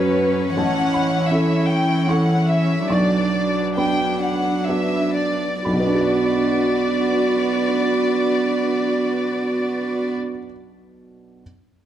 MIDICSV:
0, 0, Header, 1, 6, 480
1, 0, Start_track
1, 0, Key_signature, 2, "minor"
1, 0, Tempo, 722892
1, 376, Time_signature, 3, 2, 24, 8
1, 863, Tempo, 775194
1, 1343, Tempo, 845070
1, 2303, Tempo, 910470
1, 2783, Tempo, 961538
1, 6367, End_track
2, 0, Start_track
2, 0, Title_t, "Violin section"
2, 0, Program_c, 0, 48
2, 0, Note_on_c, 0, 71, 47
2, 374, Note_on_c, 0, 78, 57
2, 378, Note_off_c, 0, 71, 0
2, 852, Note_off_c, 0, 78, 0
2, 861, Note_on_c, 0, 76, 43
2, 1097, Note_on_c, 0, 79, 44
2, 1098, Note_off_c, 0, 76, 0
2, 1339, Note_on_c, 0, 78, 39
2, 1342, Note_off_c, 0, 79, 0
2, 1568, Note_on_c, 0, 76, 43
2, 1570, Note_off_c, 0, 78, 0
2, 1808, Note_off_c, 0, 76, 0
2, 1813, Note_on_c, 0, 74, 37
2, 2255, Note_off_c, 0, 74, 0
2, 2303, Note_on_c, 0, 79, 43
2, 2522, Note_off_c, 0, 79, 0
2, 2542, Note_on_c, 0, 78, 35
2, 2784, Note_off_c, 0, 78, 0
2, 2785, Note_on_c, 0, 76, 41
2, 3020, Note_on_c, 0, 74, 34
2, 3024, Note_off_c, 0, 76, 0
2, 3257, Note_off_c, 0, 74, 0
2, 3263, Note_on_c, 0, 74, 43
2, 5508, Note_off_c, 0, 74, 0
2, 6367, End_track
3, 0, Start_track
3, 0, Title_t, "String section"
3, 0, Program_c, 1, 48
3, 0, Note_on_c, 1, 61, 49
3, 0, Note_on_c, 1, 66, 58
3, 0, Note_on_c, 1, 73, 51
3, 376, Note_off_c, 1, 66, 0
3, 382, Note_on_c, 1, 64, 42
3, 1809, Note_off_c, 1, 61, 0
3, 1809, Note_off_c, 1, 73, 0
3, 1810, Note_on_c, 1, 62, 35
3, 1810, Note_on_c, 1, 71, 35
3, 1811, Note_on_c, 1, 54, 37
3, 1812, Note_off_c, 1, 64, 0
3, 3259, Note_off_c, 1, 71, 0
3, 3260, Note_off_c, 1, 62, 0
3, 3265, Note_on_c, 1, 71, 44
3, 3266, Note_on_c, 1, 62, 39
3, 3267, Note_off_c, 1, 54, 0
3, 3267, Note_on_c, 1, 66, 42
3, 5510, Note_off_c, 1, 62, 0
3, 5510, Note_off_c, 1, 71, 0
3, 5512, Note_off_c, 1, 66, 0
3, 6367, End_track
4, 0, Start_track
4, 0, Title_t, "Felt piano"
4, 0, Program_c, 2, 0
4, 0, Control_c, 2, 64, 127
4, 0, Note_on_c, 2, 42, 52
4, 0, Note_on_c, 2, 61, 35
4, 0, Note_on_c, 2, 66, 36
4, 0, Note_on_c, 2, 71, 41
4, 0, Note_on_c, 2, 83, 61
4, 0, Note_on_c, 2, 85, 69
4, 350, Note_off_c, 2, 61, 0
4, 352, Note_off_c, 2, 66, 0
4, 353, Note_off_c, 2, 71, 0
4, 353, Note_off_c, 2, 83, 0
4, 379, Note_on_c, 2, 33, 41
4, 383, Note_on_c, 2, 81, 54
4, 389, Control_c, 2, 64, 0
4, 394, Note_off_c, 2, 85, 0
4, 396, Note_off_c, 2, 42, 0
4, 506, Control_c, 2, 64, 127
4, 604, Note_off_c, 2, 81, 0
4, 624, Note_on_c, 2, 83, 58
4, 850, Note_off_c, 2, 33, 0
4, 869, Note_on_c, 2, 61, 34
4, 872, Note_on_c, 2, 64, 33
4, 874, Note_on_c, 2, 69, 38
4, 1321, Note_off_c, 2, 61, 0
4, 1321, Note_off_c, 2, 83, 0
4, 1322, Note_off_c, 2, 64, 0
4, 1323, Note_off_c, 2, 69, 0
4, 1343, Note_on_c, 2, 61, 29
4, 1346, Note_on_c, 2, 64, 29
4, 1349, Note_on_c, 2, 69, 35
4, 1351, Note_on_c, 2, 85, 48
4, 1787, Note_off_c, 2, 61, 0
4, 1788, Note_off_c, 2, 64, 0
4, 1790, Note_off_c, 2, 69, 0
4, 1791, Note_off_c, 2, 85, 0
4, 1809, Note_on_c, 2, 35, 34
4, 1813, Note_on_c, 2, 85, 47
4, 1821, Control_c, 2, 64, 0
4, 1946, Control_c, 2, 64, 127
4, 2282, Note_off_c, 2, 85, 0
4, 2288, Note_off_c, 2, 35, 0
4, 2306, Note_on_c, 2, 59, 26
4, 2307, Note_on_c, 2, 83, 32
4, 2310, Note_on_c, 2, 62, 27
4, 2311, Note_on_c, 2, 54, 28
4, 2763, Note_off_c, 2, 59, 0
4, 2764, Note_off_c, 2, 83, 0
4, 2765, Note_off_c, 2, 54, 0
4, 2765, Note_off_c, 2, 62, 0
4, 2785, Note_on_c, 2, 59, 25
4, 2788, Note_on_c, 2, 62, 25
4, 2789, Note_on_c, 2, 66, 29
4, 3248, Note_off_c, 2, 59, 0
4, 3250, Note_off_c, 2, 62, 0
4, 3250, Note_off_c, 2, 66, 0
4, 3268, Note_on_c, 2, 83, 42
4, 3273, Note_on_c, 2, 35, 34
4, 3280, Control_c, 2, 64, 0
4, 3308, Note_on_c, 2, 47, 37
4, 3343, Note_on_c, 2, 59, 34
4, 3378, Note_on_c, 2, 62, 33
4, 3404, Control_c, 2, 64, 127
4, 3414, Note_on_c, 2, 66, 33
4, 3448, Note_on_c, 2, 74, 35
4, 5513, Note_off_c, 2, 83, 0
4, 5518, Note_off_c, 2, 35, 0
4, 5553, Note_off_c, 2, 47, 0
4, 5587, Note_off_c, 2, 59, 0
4, 5623, Note_off_c, 2, 62, 0
4, 5658, Note_off_c, 2, 66, 0
4, 5693, Note_off_c, 2, 74, 0
4, 6154, Control_c, 2, 64, 0
4, 6367, End_track
5, 0, Start_track
5, 0, Title_t, "Viola"
5, 0, Program_c, 3, 41
5, 0, Note_on_c, 3, 61, 51
5, 1787, Note_off_c, 3, 61, 0
5, 1808, Note_on_c, 3, 62, 33
5, 3110, Note_off_c, 3, 62, 0
5, 3268, Note_on_c, 3, 66, 42
5, 5512, Note_off_c, 3, 66, 0
5, 6367, End_track
6, 0, Start_track
6, 0, Title_t, "Cello"
6, 0, Program_c, 4, 42
6, 0, Note_on_c, 4, 54, 47
6, 351, Note_off_c, 4, 54, 0
6, 380, Note_on_c, 4, 52, 44
6, 1788, Note_off_c, 4, 52, 0
6, 1815, Note_on_c, 4, 54, 33
6, 3113, Note_off_c, 4, 54, 0
6, 3265, Note_on_c, 4, 59, 39
6, 5509, Note_off_c, 4, 59, 0
6, 6367, End_track
0, 0, End_of_file